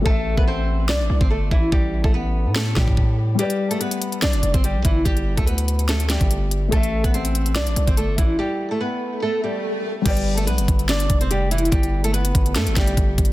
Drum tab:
CC |------------------------------------------------|------------------------------------------------|------------------------------------------------|------------------------------------------------|
HH |------------------------------------------------|------------------------------------------------|x--x-----x--x--x--x--x--x--x--x--x--x-----x-----|x--x-----x--x--x--x--x--x--x--x--x--x-----x-----|
SD |------------------------o-----------------------|------------------------o-----o-----------------|------------------------o-----------------------|------------------------o-----o-----------------|
BD |o--------o-----------------------o--------o-----|o--------o--------------------o--o--o-----------|---------------------------------o--------o-----|o--------o-----------------------o--------------|

CC |------------------------------------------------|------------------------------------------------|x-----------------------------------------------|------------------------------------------------|
HH |x--x-----x--x--x--x--x--x--x--x--x--x-----x-----|------------------------------------------------|x--x-----x--x--x--x--x--x--x--x--x--x-----x-x-x-|x--x-----x--x--x--x--x--x--x--x--x--x-----x-x---|
SD |------------------------o-----------------------|------------------------------------------------|------------------------o-----------------------|------------------------o-----o-----------------|
BD |o--------o-----------------------o--------o-----|------------------------------------------------|o-----------------o-----------o-----------------|o-----------------o-----------o-----o-----o-----|